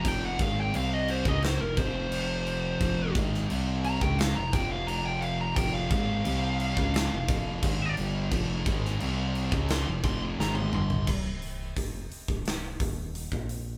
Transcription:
<<
  \new Staff \with { instrumentName = "Lead electric guitar" } { \time 4/4 \key f \dorian \tempo 4 = 87 g''16 fis''16 f''16 g''16 f''16 ees''16 c''16 ees''16 c''16 bes'16 c''4.~ | c''8 r4 bes''16 g''16 f''16 bes''16 g''16 f''16 bes''16 g''16 f''16 bes''16 | g''16 f''16 f''2. r8 | r2 c'''16 r16 c'''16 r16 bes''16 c'''16 c'''8 |
r1 | }
  \new Staff \with { instrumentName = "Distorted electric guitar" } { \clef bass \time 4/4 \key f \dorian <f, c f>8 <aes, ees aes>8 <c g c'>8. <des aes des'>8 <f, c>16 <f, c f>4. | <f, c f>8 <aes, ees aes>8 <c g c'>8. <des aes des'>8 <f, c>16 <f, c f>4. | <f, c f>8 <aes, ees aes>8 <c g c'>8. <des aes des'>8 <f, c>16 <f, c f>8 <aes, ees aes>8 <g, d g>8 | <f, c f>8 <aes, ees aes>8 <c g c'>8. <des aes des'>8 <f, c>16 <f, c f>8 <aes, ees aes>8 <g, d g>8 |
r1 | }
  \new Staff \with { instrumentName = "Distorted electric guitar" } { \clef bass \time 4/4 \key f \dorian <f, c f>8 <aes, ees aes>8 <c g c'>8. <des aes des'>8 <f, c>16 <f, c f>4. | <f, c f>8 <aes, ees aes>8 <c g c'>8. <des aes des'>8 <f, c>16 <f, c f>4. | <f, c f>8 <aes, ees aes>8 <c g c'>8. <des aes des'>8 <f, c>16 <f, c f>8 <aes, ees aes>8 <g, d g>8 | <f, c f>8 <aes, ees aes>8 <c g c'>8. <des aes des'>8 <f, c>16 <f, c f>8 <aes, ees aes>8 <g, d g>8 |
r1 | }
  \new Staff \with { instrumentName = "FM bass" } { \clef bass \time 4/4 \key f \dorian f,,8 aes,,8 c,8. des,8 f,,16 f,,4. | f,,8 aes,,8 c,8. des,8 f,,16 f,,4. | f,,8 aes,,8 c,8. des,8 f,,16 f,,8 aes,,8 g,,8 | f,,8 aes,,8 c,8. des,8 f,,16 f,,8 aes,,8 g,,8 |
c,,4 f,,8 c,,16 c,,16 c,,8 ees,,8. bes,,8. | }
  \new DrumStaff \with { instrumentName = "Drums" } \drummode { \time 4/4 <cymc bd>8 <cymc bd>8 cymc8 cymc16 bd16 <cymc sn>8 <cymc bd>8 cymc8 cymc8 | <cymc bd>8 <cymc bd>16 sn16 cymc8 cymc16 bd16 <cymc sn>8 <cymc bd>8 cymc8 cymc8 | <cymc bd>8 <cymc bd>8 cymc8 cymc16 bd16 <cymc sn>8 <cymc bd>8 <cymc bd>8 cymc8 | <cymc bd>8 <cymc bd>16 sn16 cymc8 cymc16 bd16 <cymc sn>8 <cymc bd>8 sn16 tommh16 toml16 tomfh16 |
<cymc bd>8 hho8 <hho bd>8 hho16 bd16 <hho sn>8 <hho bd>8 hho16 bd16 hho8 | }
>>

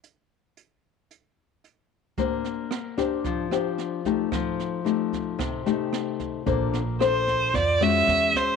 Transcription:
<<
  \new Staff \with { instrumentName = "Violin" } { \time 4/4 \key bes \major \tempo 4 = 112 r1 | r1 | r1 | r4 c''4 d''8 e''4 c''8 | }
  \new Staff \with { instrumentName = "Nylon-string guitar" } { \time 4/4 \key bes \major << { r1 | <d' g' c''>4 r8 <d' g' c''>4 <d' g' c''>4 <a ees' g'>8~ | <a ees' g'>4 <a ees' g'>4. <a ees' g'>4. | <d' a' c''>8 r8 <d' a' c''>4 r8 <aes des' ges'>4. | } \\ { r1 | bes2 f2 | f2 c2 | bes2 f4 r4 | } >> }
  \new Staff \with { instrumentName = "Upright bass" } { \clef bass \time 4/4 \key bes \major r1 | r1 | r1 | bes,,2 f,4 e,8 r8 | }
  \new DrumStaff \with { instrumentName = "Drums" } \drummode { \time 4/4 hh4 hh4 hh4 hh4 | <bd sn>8 sn8 <ss sn>8 <bd sn>8 <bd sn>8 <ss sn>8 sn8 <bd sn>8 | <bd ss sn>8 sn8 sn8 <bd sn>8 <bd ss sn>8 sn8 <ss sn>8 <bd sn>8 | <bd sn>8 sn8 <ss sn>8 <bd sn>8 <bd sn>8 <ss sn>8 sn8 <bd sn>8 | }
>>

